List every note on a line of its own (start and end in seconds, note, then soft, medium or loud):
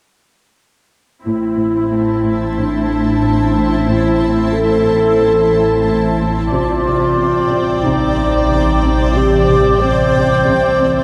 1.23 6.48 A1 soft
1.23 6.48 A1 medium
1.23 1.44 A2 soft
1.23 6.48 A2 soft
1.23 6.48 C4 soft
1.23 2.52 E4 soft
1.23 6.48 E4 soft
1.23 6.48 C5 soft
1.23 6.48 A5 soft
1.57 1.77 A2 soft
1.90 2.10 A3 soft
2.23 2.43 A2 soft
2.55 2.75 A2 soft
2.55 3.86 D4 soft
2.89 3.09 A3 soft
3.22 3.42 A2 soft
3.55 3.75 A3 soft
3.88 4.08 A2 soft
3.88 4.54 E4 soft
4.21 4.41 A2 soft
4.53 4.74 A3 soft
4.53 6.18 A4 soft
4.86 5.06 A2 soft
5.20 5.40 A2 soft
5.53 5.73 A3 soft
5.87 6.06 A2 soft
6.19 6.39 A3 soft
6.51 11.04 A1 medium
6.51 11.04 C2 soft
6.51 11.04 C3 soft
6.51 6.72 C3 soft
6.51 11.04 C4 soft
6.51 7.85 F4 medium
6.51 11.04 C5 soft
6.51 11.04 D5 soft
6.51 11.04 G5 soft
6.85 7.05 C3 soft
7.18 7.38 C4 soft
7.51 7.70 C3 soft
7.84 8.04 C3 soft
7.84 9.19 D#4 soft
8.17 8.37 C4 soft
8.50 8.70 C3 soft
8.85 9.04 C4 soft
9.17 9.37 C3 soft
9.17 9.82 G4 medium
9.50 9.69 C3 soft
9.81 10.02 C4 soft
9.81 11.04 C5 medium
10.15 10.35 C3 soft
10.47 10.67 C3 soft
10.80 11.00 C4 soft